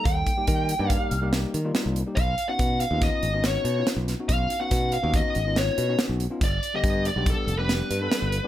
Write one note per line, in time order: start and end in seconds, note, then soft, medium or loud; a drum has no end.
0.00 0.31 G3 medium
0.00 0.31 A#3 medium
0.00 0.31 D#4 medium
0.00 0.32 A4 medium
0.05 0.22 D#2 medium
0.05 0.89 G5 medium
0.05 kick loud
0.05 closed hi-hat medium
0.27 kick medium
0.27 closed hi-hat medium
0.37 0.73 G3 medium
0.37 0.73 A#3 medium
0.37 0.74 D#4 medium
0.37 0.74 G4 medium
0.47 0.73 D#3 medium
0.47 kick medium
0.47 closed hi-hat medium
0.69 closed hi-hat medium
0.79 0.96 G2 medium
0.79 1.15 G3 medium
0.79 1.16 A#3 medium
0.79 1.16 D#4 medium
0.79 1.16 G4 medium
0.89 1.29 F5 medium
0.89 kick medium
0.89 closed hi-hat medium
1.11 1.44 C2 medium
1.11 closed hi-hat soft
1.21 1.58 G3 medium
1.21 1.58 A#3 medium
1.21 1.58 D#4 medium
1.21 1.58 G4 medium
1.33 snare medium
1.33 closed hi-hat medium
1.54 1.71 D#3 medium
1.54 closed hi-hat medium
1.65 2.01 G3 medium
1.65 2.01 A#3 medium
1.65 2.01 D#4 medium
1.65 2.01 F4 medium
1.75 snare loud
1.75 closed hi-hat medium
1.86 2.02 C2 medium
1.96 closed hi-hat soft
2.06 2.17 G3 medium
2.06 2.17 A#3 soft
2.06 2.18 D#4 medium
2.06 2.18 G4 medium
2.16 2.34 B1 medium
2.16 2.46 F5 medium
2.16 kick medium
2.16 closed hi-hat medium
2.38 closed hi-hat soft
2.49 2.85 B3 medium
2.49 2.85 C#4 medium
2.49 2.85 D#4 medium
2.49 2.85 F#4 medium
2.49 2.80 F#5 medium
2.59 2.84 B2 medium
2.59 kick medium
2.59 closed hi-hat medium
2.80 3.03 F5 medium
2.80 closed hi-hat medium
2.91 3.08 D#2 medium
2.91 3.28 B3 medium
2.91 3.28 C#4 medium
2.91 3.28 D#4 medium
2.91 3.28 F4 medium
3.02 3.42 D#5 medium
3.02 kick loud
3.02 snare soft
3.02 closed hi-hat medium
3.23 3.56 G#1 medium
3.23 closed hi-hat soft
3.34 3.70 B3 medium
3.34 3.71 C#4 medium
3.34 3.70 D#4 medium
3.34 3.71 F#4 medium
3.44 3.85 C#5 medium
3.44 snare medium
3.44 closed hi-hat medium
3.64 3.82 B2 medium
3.64 closed hi-hat medium
3.77 4.13 B3 medium
3.77 4.13 C#4 medium
3.77 4.13 D#4 medium
3.77 4.14 F4 medium
3.87 snare medium
3.87 closed hi-hat medium
3.96 4.13 B1 medium
4.08 snare soft
4.08 closed hi-hat medium
4.19 4.55 B3 medium
4.19 4.55 C#4 medium
4.19 4.56 D#4 medium
4.19 4.56 F#4 medium
4.29 4.46 B1 medium
4.29 4.60 F5 medium
4.29 kick loud
4.29 closed hi-hat medium
4.50 closed hi-hat medium
4.60 4.97 B3 medium
4.60 4.97 C#4 medium
4.60 4.97 D#4 medium
4.60 4.97 F#4 medium
4.60 4.93 F#5 medium
4.71 4.96 B2 medium
4.71 kick medium
4.71 snare soft
4.71 closed hi-hat medium
4.92 5.15 F5 medium
4.92 closed hi-hat medium
5.03 5.20 D#2 medium
5.03 5.39 B3 medium
5.03 5.39 C#4 medium
5.03 5.40 D#4 medium
5.03 5.40 F#4 medium
5.14 5.58 D#5 medium
5.14 kick loud
5.14 closed hi-hat medium
5.35 5.69 G#1 medium
5.35 closed hi-hat soft
5.47 5.83 B3 medium
5.47 5.83 C#4 medium
5.47 5.83 D#4 medium
5.47 5.83 F4 medium
5.56 5.97 C#5 medium
5.56 snare medium
5.56 closed hi-hat medium
5.78 5.95 B2 medium
5.78 closed hi-hat medium
5.88 6.25 B3 medium
5.88 6.25 C#4 medium
5.88 6.25 D#4 medium
5.88 6.25 F#4 medium
5.99 snare loud
5.99 closed hi-hat medium
6.09 6.26 B1 medium
6.20 closed hi-hat medium
6.30 6.41 B3 medium
6.30 6.42 C#4 medium
6.30 6.42 D#4 medium
6.30 6.42 F4 medium
6.41 6.58 G1 medium
6.41 6.75 D5 loud
6.41 kick loud
6.41 closed hi-hat medium
6.63 closed hi-hat soft
6.74 7.10 D3 medium
6.74 7.10 G3 medium
6.74 7.10 B3 medium
6.74 7.11 G4 medium
6.74 7.07 D#5 medium
6.84 7.09 G2 medium
6.84 kick loud
6.84 closed hi-hat medium
7.05 7.28 D5 medium
7.05 closed hi-hat medium
7.16 7.33 B1 medium
7.16 7.52 G3 medium
7.16 7.52 B3 medium
7.16 7.53 D4 medium
7.16 7.53 G4 medium
7.26 7.58 A4 medium
7.26 kick loud
7.26 closed hi-hat medium
7.47 7.80 F1 medium
7.47 closed hi-hat medium
7.59 7.95 G3 medium
7.59 7.95 B3 medium
7.59 7.95 D4 medium
7.59 7.95 G4 medium
7.59 8.47 B4 medium
7.69 snare medium
7.69 closed hi-hat medium
7.91 8.07 G2 medium
7.91 closed hi-hat medium
8.01 8.37 G3 medium
8.01 8.37 B3 medium
8.01 8.38 D4 medium
8.01 8.38 A4 medium
8.12 snare loud
8.12 closed hi-hat medium
8.22 8.39 G1 medium
8.32 closed hi-hat soft
8.43 8.47 G3 medium
8.43 8.47 B3 medium